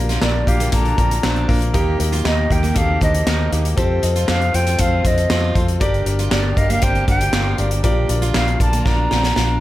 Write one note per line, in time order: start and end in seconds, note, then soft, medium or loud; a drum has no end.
0.00 0.17 A#1 medium
0.00 0.43 A#2 medium
0.00 1.70 D3 medium
0.00 0.43 F3 medium
0.00 0.17 A#3 medium
0.00 1.70 A#3 medium
0.00 0.17 D4 medium
0.00 0.17 F4 medium
0.00 1.72 F4 medium
0.00 0.17 A#4 medium
0.09 0.21 F4 medium
0.09 snare soft
0.09 closed hi-hat soft
0.21 0.43 A#1 medium
0.21 0.42 A#3 medium
0.21 0.42 D4 medium
0.21 0.34 D4 medium
0.21 0.42 F4 medium
0.21 0.42 A#4 medium
0.21 0.50 D5 medium
0.21 snare medium
0.21 clap medium
0.47 0.68 A#1 medium
0.47 0.67 A#3 medium
0.47 0.68 D4 medium
0.47 0.68 F4 medium
0.47 0.68 G4 medium
0.47 0.73 F5 medium
0.47 kick medium
0.47 closed hi-hat medium
0.60 0.72 A#3 medium
0.60 closed hi-hat medium
0.72 0.94 A#1 medium
0.72 0.93 A#3 medium
0.72 0.93 D4 medium
0.72 0.97 D4 medium
0.72 0.93 F4 medium
0.72 0.93 A4 loud
0.72 1.46 A#5 medium
0.72 kick medium
0.72 closed hi-hat loud
0.85 closed hi-hat soft
0.97 1.19 A#1 medium
0.97 1.18 A#3 medium
0.97 1.10 C4 medium
0.97 1.18 D4 medium
0.97 1.18 F4 medium
0.97 1.18 A#4 medium
0.97 kick medium
0.97 closed hi-hat medium
1.11 closed hi-hat medium
1.23 1.44 A#1 medium
1.23 1.43 A#3 medium
1.23 1.43 D4 medium
1.23 1.59 D4 medium
1.23 1.44 F4 medium
1.23 1.44 C5 medium
1.23 snare loud
1.23 clap medium
1.36 closed hi-hat soft
1.48 1.70 A#1 medium
1.48 1.69 A#3 medium
1.48 1.69 D4 medium
1.48 1.69 F4 medium
1.48 1.69 A#4 medium
1.48 kick medium
1.48 open hi-hat medium
1.62 closed hi-hat soft
1.73 1.95 D#2 medium
1.73 2.46 A#2 medium
1.73 3.76 D#3 medium
1.73 1.94 A#3 medium
1.73 3.76 A#3 medium
1.73 1.94 D#4 medium
1.73 1.94 G4 medium
1.73 1.98 G4 medium
1.73 3.76 G4 medium
1.73 1.95 A#4 loud
1.73 kick loud
1.73 closed hi-hat medium
1.99 2.20 D#2 medium
1.99 2.19 A#3 medium
1.99 2.20 D#4 medium
1.99 2.20 G4 medium
1.99 2.20 A#4 medium
1.99 closed hi-hat medium
2.12 2.24 F4 medium
2.12 closed hi-hat soft
2.25 2.46 D#2 medium
2.25 2.45 A#3 medium
2.25 2.37 D#4 medium
2.25 2.45 D#4 medium
2.25 2.46 G4 medium
2.25 2.46 A#4 medium
2.25 2.54 D#5 medium
2.25 snare medium
2.25 clap medium
2.50 2.71 D#2 medium
2.50 2.71 A#3 medium
2.50 2.71 D#4 medium
2.50 2.71 G4 medium
2.50 2.71 A#4 medium
2.50 2.79 G5 medium
2.50 kick medium
2.50 closed hi-hat medium
2.63 2.75 A#3 medium
2.63 closed hi-hat soft
2.75 2.97 D#2 medium
2.75 2.96 A#3 medium
2.75 3.00 C4 medium
2.75 2.96 D#4 medium
2.75 2.96 G4 medium
2.75 2.96 A4 medium
2.75 3.02 F5 medium
2.75 kick medium
2.75 closed hi-hat loud
3.00 3.22 D#2 medium
3.00 3.21 A#3 medium
3.00 3.13 D4 medium
3.00 3.21 D#4 medium
3.00 3.22 G4 medium
3.00 3.22 C5 medium
3.00 3.50 D#5 medium
3.00 kick medium
3.00 closed hi-hat medium
3.15 closed hi-hat medium
3.26 3.47 D#2 medium
3.26 3.47 A#3 medium
3.26 3.47 D#4 medium
3.26 3.62 D#4 medium
3.26 3.47 G4 medium
3.26 3.47 A#4 medium
3.26 snare loud
3.26 clap loud
3.51 3.73 D#2 medium
3.51 3.72 A#3 medium
3.51 3.72 D#4 medium
3.51 3.73 G4 medium
3.51 3.73 A#4 medium
3.51 closed hi-hat medium
3.65 closed hi-hat soft
3.77 3.98 F2 medium
3.77 4.50 C3 medium
3.77 5.79 C3 medium
3.77 5.79 A3 medium
3.77 3.98 C4 loud
3.77 3.98 F4 medium
3.77 5.79 F4 medium
3.77 4.02 G4 medium
3.77 3.98 A4 loud
3.77 3.98 C5 loud
3.77 kick loud
3.77 closed hi-hat medium
4.02 4.24 F2 medium
4.02 4.23 C4 medium
4.02 4.23 F4 medium
4.02 4.23 A4 medium
4.02 4.23 D#5 medium
4.02 closed hi-hat medium
4.16 4.28 F4 medium
4.16 closed hi-hat soft
4.28 4.49 F2 medium
4.28 4.48 C4 medium
4.28 4.40 D4 medium
4.28 4.48 F4 medium
4.28 4.49 A4 medium
4.28 4.49 C5 medium
4.28 4.57 F5 medium
4.28 snare loud
4.28 clap medium
4.42 closed hi-hat soft
4.53 4.75 F2 medium
4.53 4.74 C4 medium
4.53 4.74 F4 medium
4.53 4.74 A4 medium
4.53 4.74 C5 medium
4.53 4.82 G5 medium
4.53 closed hi-hat medium
4.67 4.78 C4 medium
4.67 closed hi-hat soft
4.78 5.00 F2 medium
4.78 4.99 C4 medium
4.78 5.03 C4 medium
4.78 4.99 F4 medium
4.78 4.99 A4 medium
4.78 5.00 C5 medium
4.78 5.08 F5 medium
4.78 kick medium
4.78 closed hi-hat medium
5.04 5.26 F2 medium
5.04 5.25 C4 medium
5.04 5.17 D4 medium
5.04 5.25 F4 medium
5.04 5.25 A4 medium
5.04 5.25 C5 medium
5.04 5.57 D#5 medium
5.04 kick medium
5.04 closed hi-hat medium
5.18 closed hi-hat medium
5.29 5.51 F2 medium
5.29 5.50 C4 medium
5.29 5.50 F4 medium
5.29 5.66 F4 medium
5.29 5.50 A4 medium
5.29 5.51 C5 medium
5.29 snare loud
5.29 clap medium
5.54 5.76 F2 loud
5.54 5.75 C4 medium
5.54 5.75 F4 medium
5.54 5.75 A4 medium
5.54 5.76 C5 medium
5.54 kick medium
5.54 closed hi-hat medium
5.68 closed hi-hat soft
5.80 6.02 G1 medium
5.80 6.53 G2 medium
5.80 6.53 D3 medium
5.80 9.60 D3 medium
5.80 9.60 A#3 medium
5.80 6.01 D4 loud
5.80 6.01 G4 medium
5.80 6.05 G4 medium
5.80 7.82 G4 medium
5.80 6.01 A#4 medium
5.80 6.01 D5 loud
5.80 kick loud
5.80 closed hi-hat medium
5.94 closed hi-hat soft
6.05 6.27 G1 medium
6.05 6.26 D4 medium
6.05 6.26 G4 medium
6.05 6.27 A#4 medium
6.05 6.27 D5 medium
6.05 closed hi-hat medium
6.19 6.31 F4 medium
6.19 closed hi-hat soft
6.31 6.53 G1 medium
6.31 6.52 D4 medium
6.31 6.44 D4 medium
6.31 6.52 G4 medium
6.31 6.52 A#4 medium
6.31 6.52 D5 medium
6.31 6.59 D5 medium
6.31 snare loud
6.31 clap medium
6.56 6.78 G1 medium
6.56 6.77 D4 medium
6.56 6.77 G4 medium
6.56 6.77 A#4 medium
6.56 6.72 D#5 medium
6.56 6.77 F5 medium
6.56 kick medium
6.56 closed hi-hat medium
6.70 6.82 A#3 medium
6.70 6.84 F5 medium
6.70 closed hi-hat medium
6.82 7.03 G1 medium
6.82 7.07 C4 medium
6.82 7.03 D4 medium
6.82 7.03 G4 medium
6.82 7.03 A#4 medium
6.82 7.03 C5 medium
6.82 7.08 G5 loud
6.82 kick medium
6.82 closed hi-hat medium
6.95 closed hi-hat soft
7.08 7.29 G1 medium
7.08 7.28 D4 medium
7.08 7.20 D4 medium
7.08 7.28 G4 medium
7.08 7.28 A#4 medium
7.08 7.29 F5 medium
7.08 7.56 G5 medium
7.08 kick medium
7.08 closed hi-hat medium
7.21 closed hi-hat medium
7.33 7.54 G1 loud
7.33 7.54 D4 medium
7.33 7.69 F4 medium
7.33 7.54 G4 medium
7.33 7.54 A#4 medium
7.33 7.54 F5 medium
7.33 snare loud
7.33 clap medium
7.58 7.79 G1 medium
7.58 7.79 D4 medium
7.58 7.79 G4 medium
7.58 7.79 A#4 medium
7.58 7.79 D5 medium
7.58 closed hi-hat medium
7.71 closed hi-hat medium
7.83 8.05 A#1 medium
7.83 8.56 A#2 medium
7.83 8.56 F3 medium
7.83 8.04 D4 loud
7.83 8.04 F4 loud
7.83 9.60 F4 medium
7.83 8.08 G4 medium
7.83 8.04 A#4 medium
7.83 8.04 D5 loud
7.83 kick medium
7.83 closed hi-hat loud
8.09 8.30 A#1 medium
8.09 8.29 D4 medium
8.09 8.30 F4 medium
8.09 8.30 A#4 medium
8.09 8.30 D5 medium
8.09 closed hi-hat medium
8.22 8.34 F4 medium
8.22 closed hi-hat soft
8.34 8.56 A#1 medium
8.34 8.55 D4 medium
8.34 8.47 D4 medium
8.34 8.55 F4 medium
8.34 8.55 A#4 medium
8.34 8.55 F5 medium
8.34 8.59 F5 medium
8.34 snare medium
8.34 clap medium
8.48 closed hi-hat soft
8.60 8.81 A#1 medium
8.60 8.80 D4 medium
8.60 8.80 F4 medium
8.60 8.81 A#4 medium
8.60 8.81 D5 medium
8.60 8.88 A5 medium
8.60 kick medium
8.60 closed hi-hat medium
8.73 8.85 A#3 medium
8.73 closed hi-hat soft
8.85 9.07 A#1 medium
8.85 9.06 D4 medium
8.85 9.10 D4 medium
8.85 9.06 F4 medium
8.85 9.06 A#4 medium
8.85 9.06 D5 medium
8.85 9.60 A#5 medium
8.85 kick medium
8.85 snare medium
9.11 9.32 A#1 medium
9.11 9.23 C4 medium
9.11 9.31 D4 medium
9.11 9.31 F4 medium
9.11 9.32 A#4 medium
9.11 9.32 D5 medium
9.11 snare medium
9.23 snare medium
9.36 9.57 A#1 medium
9.36 9.57 D4 medium
9.36 9.60 D4 medium
9.36 9.57 F4 medium
9.36 9.57 A#4 medium
9.36 9.57 F5 medium
9.36 snare medium